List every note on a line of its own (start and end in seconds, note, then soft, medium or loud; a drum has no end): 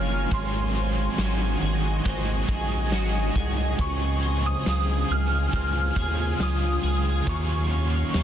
0.00 0.27 F#1 medium
0.00 0.31 A#2 medium
0.00 0.32 F3 medium
0.00 0.33 G#3 medium
0.00 0.33 C#4 medium
0.00 0.40 C#4 medium
0.00 0.28 F4 medium
0.00 0.40 F4 medium
0.00 0.35 G#4 medium
0.00 1.22 G#4 medium
0.00 0.28 A#4 medium
0.00 0.28 C#5 medium
0.00 0.20 F5 medium
0.00 7.23 G#5 medium
0.00 0.35 F6 loud
0.30 1.08 G#1 loud
0.30 2.03 G#2 medium
0.30 3.79 G#2 medium
0.30 2.03 D#3 medium
0.30 2.05 F#3 medium
0.30 2.06 G#3 medium
0.30 3.75 F#4 medium
0.30 7.22 G#4 medium
0.30 3.75 D#5 medium
0.30 2.02 C6 medium
0.30 kick loud
0.30 closed hi-hat medium
0.35 2.07 C4 medium
0.35 2.08 G#4 medium
0.75 2.04 C4 medium
0.75 closed hi-hat medium
1.18 1.57 G#1 loud
1.18 2.91 F#4 medium
1.18 3.68 D#5 medium
1.18 snare loud
1.18 closed hi-hat medium
1.18 tambourine medium
1.62 2.00 G#1 medium
1.62 2.49 G#4 medium
1.62 closed hi-hat medium
2.04 2.44 G#1 loud
2.04 3.78 G#2 medium
2.04 3.79 D#3 medium
2.04 3.80 F#3 medium
2.04 3.80 G#3 medium
2.04 4.22 C4 medium
2.04 3.81 C4 medium
2.04 kick medium
2.04 closed hi-hat medium
2.09 3.81 G#4 loud
2.48 2.93 A#1 medium
2.48 3.35 G#4 medium
2.48 kick loud
2.48 closed hi-hat medium
2.92 3.30 G#1 loud
2.92 3.88 F#4 medium
2.92 4.19 C7 medium
2.92 snare loud
2.92 closed hi-hat medium
2.92 tambourine medium
3.35 3.74 C2 medium
3.35 5.09 G#4 medium
3.35 kick medium
3.35 closed hi-hat soft
3.78 4.56 C#2 loud
3.78 7.26 C#3 medium
3.78 4.66 C#3 medium
3.78 4.65 F3 medium
3.78 4.66 G#3 medium
3.78 4.67 C4 medium
3.78 7.23 F4 medium
3.78 4.67 G#4 medium
3.78 8.23 F5 medium
3.78 4.47 C#6 medium
3.78 kick loud
3.78 closed hi-hat medium
4.23 5.52 C4 medium
4.23 closed hi-hat medium
4.46 5.13 D#6 loud
4.66 5.05 C#2 loud
4.66 5.51 F3 medium
4.66 5.53 G#3 medium
4.66 5.54 C4 medium
4.66 6.39 F4 medium
4.66 5.54 G#4 medium
4.66 snare loud
4.66 closed hi-hat medium
4.66 tambourine medium
5.09 5.48 C#2 loud
5.09 5.95 G#4 medium
5.09 6.45 F6 loud
5.09 closed hi-hat medium
5.51 5.91 C#2 loud
5.51 7.26 C#3 medium
5.51 7.25 F3 medium
5.51 7.26 G#3 medium
5.51 7.36 C4 medium
5.51 kick medium
5.51 closed hi-hat medium
5.55 7.27 C4 loud
5.55 7.28 G#4 medium
5.96 6.35 D#2 medium
5.96 6.82 G#4 medium
5.96 kick medium
5.96 closed hi-hat medium
6.40 6.78 C#2 loud
6.40 7.36 F4 medium
6.40 7.31 D#6 medium
6.40 snare loud
6.40 closed hi-hat medium
6.40 tambourine medium
6.83 7.22 C#2 medium
6.83 7.36 G#4 medium
6.83 closed hi-hat soft
7.26 8.04 D#2 loud
7.26 8.23 D#3 medium
7.26 8.23 A#3 medium
7.26 8.23 C#4 medium
7.26 8.23 F#4 medium
7.26 8.23 D#5 medium
7.26 8.23 A#5 medium
7.26 8.23 C#6 medium
7.26 kick loud
7.26 closed hi-hat medium
7.70 8.23 C#4 medium
7.70 closed hi-hat medium
8.14 8.23 D#2 loud
8.14 8.23 D#4 medium
8.14 snare loud
8.14 closed hi-hat medium
8.14 tambourine medium